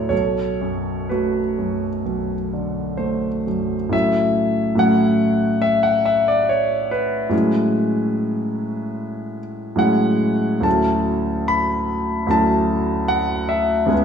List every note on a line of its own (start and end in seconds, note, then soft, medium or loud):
0.00 0.14 D2 soft
0.00 0.11 A2 soft
0.00 0.14 F#3 soft
0.00 0.14 A3 soft
0.00 0.10 A4 soft
0.00 0.09 C#5 soft
0.00 0.14 D5 medium
0.09 2.01 B1 soft
0.09 1.06 A4 soft
0.09 1.09 C#5 medium
0.61 1.39 F#2 soft
1.09 1.87 A3 soft
1.09 3.43 F#4 soft
1.09 3.46 B4 soft
1.58 2.34 F#2 soft
2.05 3.89 B1 soft
2.53 3.28 D3 soft
2.97 3.75 A3 soft
2.97 3.92 C5 soft
3.47 3.93 F#2 soft
3.89 4.74 A2 soft
3.89 4.74 F#3 soft
3.89 4.75 A3 soft
3.89 4.75 C#4 soft
3.89 4.75 E4 soft
3.89 4.78 E5 medium
4.75 7.27 A2 soft
4.75 7.27 F#3 soft
4.75 7.28 A3 soft
4.75 7.28 C#4 soft
4.75 7.29 E4 soft
4.75 5.63 F#5 medium
5.62 5.84 E5 medium
5.83 6.05 F#5 medium
6.06 6.27 E5 medium
6.28 6.49 D5 medium
6.49 6.91 C#5 medium
6.91 9.37 B4 medium
7.29 9.74 A2 soft
7.29 9.74 F#3 soft
7.29 9.76 G#3 soft
7.29 9.76 C#4 soft
7.34 9.77 E4 soft
9.76 10.61 A2 soft
9.76 10.59 F#3 soft
9.76 10.61 G#3 soft
9.76 10.61 C#4 soft
9.76 10.62 E4 soft
9.76 10.65 F#5 medium
10.60 12.25 D2 soft
10.60 12.25 F#3 soft
10.60 12.25 A3 soft
10.60 12.26 C#4 soft
10.60 12.26 E4 soft
10.60 11.48 A5 medium
11.48 12.31 B5 medium
12.27 13.85 D2 soft
12.27 13.86 F#3 soft
12.27 13.86 A3 soft
12.27 13.87 C#4 soft
12.31 13.87 E4 soft
12.31 13.10 A5 medium
13.08 13.50 F#5 medium
13.49 14.05 E5 medium
13.86 14.05 C#2 soft
13.86 14.05 G#3 soft
13.86 14.05 B3 soft
13.86 14.05 C#4 soft
13.86 14.05 G#4 soft